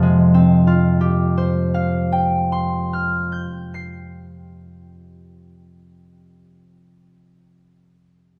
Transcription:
0.00 3.43 F2 soft
0.00 3.72 C3 soft
0.00 4.00 F3 soft
0.00 4.29 G#3 soft
0.00 0.67 F4 soft
0.00 0.16 G4 medium
0.34 4.60 C4 soft
0.67 4.93 F4 soft
1.01 5.27 G4 soft
1.38 5.64 C5 soft
1.74 6.00 F5 soft
2.12 6.24 G5 soft
2.52 6.24 C6 soft
2.93 6.25 F6 soft
3.32 6.24 G6 soft
3.74 6.23 C7 soft

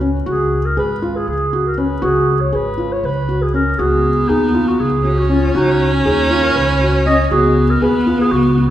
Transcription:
0.00 0.23 C#2 medium
0.00 0.16 C#4 medium
0.26 0.74 C#2 medium
0.26 0.56 F#4 medium
0.26 0.66 G#4 medium
0.65 0.77 A#4 medium
0.77 1.25 G#1 medium
0.77 0.92 G#4 medium
0.77 1.17 B4 medium
1.02 1.32 F4 medium
1.16 1.28 G#4 medium
1.27 1.99 C#2 medium
1.27 1.68 G#4 medium
1.53 1.68 F#4 medium
1.67 1.80 A#4 medium
1.78 1.93 C#4 medium
1.78 2.03 B4 medium
2.02 2.50 C#2 medium
2.02 2.32 F#4 medium
2.02 2.42 G#4 medium
2.41 2.56 C#5 medium
2.52 3.01 G#1 medium
2.52 2.68 G#4 medium
2.52 2.93 B4 medium
2.78 3.08 F4 medium
2.92 3.07 C#5 medium
3.03 3.75 C#2 medium
3.03 3.44 B4 medium
3.29 3.44 F#4 medium
3.42 3.54 G#4 medium
3.54 3.69 C#4 medium
3.54 3.79 A#4 medium
3.78 4.27 C#2 medium
3.78 5.01 B3 medium
3.78 4.09 F#4 medium
3.78 4.30 G#4 medium
4.28 4.77 D#2 medium
4.28 4.68 D#4 medium
4.28 4.44 G#4 medium
4.54 4.84 F4 medium
4.67 4.81 F#4 medium
4.80 5.51 C#2 medium
4.80 5.20 G#4 medium
5.05 7.33 C#4 loud
5.05 5.20 F#4 medium
5.19 5.32 F#4 medium
5.29 5.45 C#4 medium
5.29 5.55 F4 medium
5.55 6.03 C#2 medium
5.55 5.94 D#4 medium
5.55 5.85 F#4 medium
5.93 6.08 C#4 medium
6.06 6.53 D#2 medium
6.06 6.45 D#4 medium
6.06 6.21 G#4 medium
6.31 6.61 F4 medium
6.43 6.57 A#4 medium
6.55 7.27 C#2 medium
6.55 6.93 B4 medium
6.81 6.96 F#4 medium
7.06 7.21 C#4 medium
7.06 7.17 D#5 medium
7.31 7.79 C#2 medium
7.31 8.70 B3 loud
7.31 7.61 F#4 medium
7.31 7.71 G#4 medium
7.70 7.82 A#4 medium
7.82 7.97 G#4 medium
7.82 8.17 B4 medium
8.07 8.37 F4 medium
8.21 8.33 G#4 medium
8.32 8.70 C#2 medium
8.32 8.70 F#4 medium
8.57 8.70 F#4 medium

